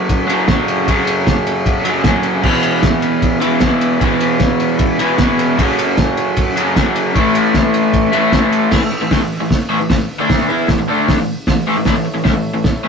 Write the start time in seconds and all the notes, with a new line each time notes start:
Already playing: F#2 C#3 F#3 F#4 A4 C#5
0.09 kick, ride
0.27 C#3 F#3, ride
0.32 F#2
0.47 F#2 C#3, kick, snare, ride
0.52 F#3
0.68 ride
0.86 F#2 C#3, kick, ride
0.91 F#3
1.07 ride
1.27 kick, snare, ride
1.47 ride
1.66 kick, ride
1.84 C#3 F#3, ride
1.90 F#2
2.04 F#2 C#3, kick, snare, ride
2.09 F#3
2.23 ride
2.43 E2 B2 E4 G#4 B4, kick, crash
2.48 E3
2.63 ride
2.82 kick, snare, ride
3.02 ride
3.22 kick, ride
3.40 B2 E3, ride
3.46 E2
3.60 E2 B2, kick, snare, ride
3.66 E3
3.81 ride
4.00 E2 B2, kick, ride
4.05 E3
4.20 ride
4.39 kick, snare, ride
4.60 ride
4.79 kick, ride
4.99 B2 E3, ride
5.04 E2
5.18 E2 B2, kick, snare, ride
5.23 E3
5.39 ride
5.57 F#2 C#3 F#4 A4 C#5, kick, ride
5.63 F#3
5.79 ride
5.97 kick, snare, ride
6.17 ride
6.36 kick, ride
6.56 C#3 F#3, ride
6.61 F#2
6.76 F#2 C#3, kick, snare, ride
6.80 F#3
6.96 ride
7.15 A2 E3 E4 A4 C#5, kick, ride
7.20 A3
7.35 ride
7.54 kick, snare, ride
7.74 ride
7.93 kick, ride
8.12 E3 A3, ride
8.17 A2
8.31 A2 E3, kick, snare, ride
8.36 A3
8.52 ride
8.71 A2 E3, kick, snare, crash
8.82 A2 E3
8.92 muted overdriven electric guitar stroke
9.01 A2 E3
9.11 D3 A3, kick, snare, open hi-hat
9.21 A2 E3
9.40 A2 E3
9.51 kick, snare, open hi-hat
9.69 A2 E3
9.80 A2 E3
9.90 A2 E3, kick, snare, open hi-hat
10.19 D3 A3 D4
10.30 kick, snare, open hi-hat
10.48 E3 B3 E4
10.68 A2 E3, kick, snare, open hi-hat
10.79 A2 E3
10.88 D3 A3 D4
11.08 kick, snare, open hi-hat
11.19 A2 E3
11.47 A2 E3, kick, snare, open hi-hat
11.67 A2 E3
11.77 A2 E3
11.84 A2 E3 E4 A4 C#5, kick, snare, open hi-hat
11.95 A2 E3
12.05 muted overdriven electric guitar stroke
12.14 A2 E3
12.24 D3 A3, kick, snare, open hi-hat
12.33 A2 E3
12.54 A2 E3
12.64 kick, snare, open hi-hat
12.83 A2 E3